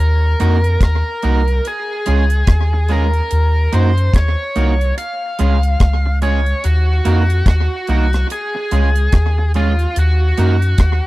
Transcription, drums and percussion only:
0.40 closed hi-hat
0.64 closed hi-hat
0.81 kick, cross-stick, closed hi-hat
1.22 closed hi-hat
1.48 closed hi-hat
1.65 closed hi-hat
2.06 closed hi-hat
2.30 closed hi-hat
2.47 kick, cross-stick, closed hi-hat
2.88 closed hi-hat
3.14 closed hi-hat
3.31 closed hi-hat
3.73 closed hi-hat
3.98 closed hi-hat
4.14 kick, cross-stick, closed hi-hat
4.56 closed hi-hat
4.81 closed hi-hat
4.98 closed hi-hat
5.39 closed hi-hat
5.63 closed hi-hat
5.80 kick, cross-stick, closed hi-hat
6.22 closed hi-hat
6.46 closed hi-hat
6.64 closed hi-hat
7.05 closed hi-hat
7.30 closed hi-hat
7.46 kick, cross-stick, closed hi-hat
7.87 closed hi-hat
8.13 cross-stick, closed hi-hat
8.30 closed hi-hat
8.71 closed hi-hat
8.95 closed hi-hat
9.12 kick, cross-stick, closed hi-hat
9.54 closed hi-hat
9.79 closed hi-hat
9.96 closed hi-hat
10.38 closed hi-hat
10.62 closed hi-hat
10.78 kick, cross-stick, closed hi-hat

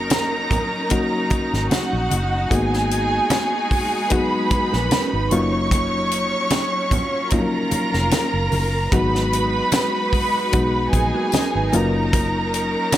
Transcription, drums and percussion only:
0.10 snare, closed hi-hat, high conga
0.51 kick, closed hi-hat, low conga
0.90 kick, closed hi-hat, muted conga
1.30 kick, closed hi-hat, muted conga
1.54 snare
1.71 snare, closed hi-hat, high conga
2.11 closed hi-hat, high conga
2.51 kick, closed hi-hat, muted conga
2.74 snare
2.91 closed hi-hat
3.30 snare, closed hi-hat, high conga
3.71 kick, open hi-hat
4.10 kick, closed hi-hat, muted conga
4.51 kick, closed hi-hat, muted conga
4.73 snare
4.91 snare, closed hi-hat, high conga
5.31 closed hi-hat, high conga
5.71 kick, closed hi-hat, muted conga
6.11 closed hi-hat
6.50 snare, closed hi-hat, high conga
6.91 kick, closed hi-hat, low conga
7.30 kick, closed hi-hat, muted conga, low conga
7.71 closed hi-hat, muted conga
7.94 snare
8.11 snare, closed hi-hat, high conga
8.52 open hi-hat, high conga
8.92 kick, closed hi-hat, muted conga
9.15 snare
9.33 closed hi-hat, muted conga
9.72 snare, closed hi-hat, tambourine, high conga
10.13 kick, open hi-hat
10.53 kick, closed hi-hat, muted conga
10.93 kick, closed hi-hat, muted conga
11.32 snare, closed hi-hat, tambourine, high conga
11.73 closed hi-hat, high conga
12.13 kick, closed hi-hat, muted conga
12.54 closed hi-hat
12.92 snare, closed hi-hat, tambourine, high conga

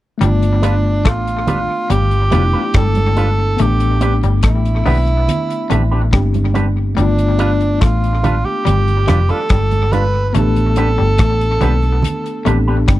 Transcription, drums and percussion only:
0.21 closed hi-hat, low conga
0.43 closed hi-hat
0.63 closed hi-hat
1.05 kick, cross-stick, closed hi-hat
1.27 closed hi-hat
1.47 closed hi-hat, high conga, low conga
1.90 closed hi-hat, low conga
2.11 closed hi-hat
2.32 closed hi-hat, low conga
2.74 kick, cross-stick, closed hi-hat, high conga
2.95 closed hi-hat, high conga
3.17 closed hi-hat, high conga
3.58 closed hi-hat, low conga
3.80 closed hi-hat
4.01 closed hi-hat
4.23 closed hi-hat
4.43 kick, cross-stick, closed hi-hat
4.65 closed hi-hat
4.86 open hi-hat, high conga, low conga
5.07 closed hi-hat
5.28 closed hi-hat, low conga
5.50 closed hi-hat
5.71 closed hi-hat, low conga
6.13 kick, cross-stick, closed hi-hat, high conga
6.34 closed hi-hat, high conga
6.55 closed hi-hat, high conga
6.97 closed hi-hat, low conga
7.19 closed hi-hat
7.39 closed hi-hat
7.61 closed hi-hat
7.81 kick, cross-stick, closed hi-hat
8.04 closed hi-hat
8.24 closed hi-hat, high conga, low conga
8.66 closed hi-hat, low conga
8.88 closed hi-hat
9.08 cross-stick, closed hi-hat, low conga
9.29 closed hi-hat
9.49 kick, cross-stick, closed hi-hat, high conga
9.71 closed hi-hat, high conga
9.93 closed hi-hat, high conga
10.35 closed hi-hat, low conga
10.56 closed hi-hat
10.76 closed hi-hat
11.18 kick, cross-stick, closed hi-hat
11.41 closed hi-hat
11.61 closed hi-hat, high conga, low conga
11.82 closed hi-hat
12.03 closed hi-hat, low conga
12.26 closed hi-hat
12.46 closed hi-hat, low conga
12.88 kick, cross-stick, closed hi-hat, high conga

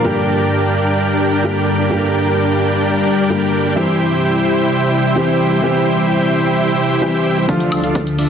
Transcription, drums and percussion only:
7.49 kick, closed hi-hat
7.60 closed hi-hat
7.72 open hi-hat, high woodblock
7.84 closed hi-hat
7.95 kick, closed hi-hat
8.07 closed hi-hat
8.18 open hi-hat

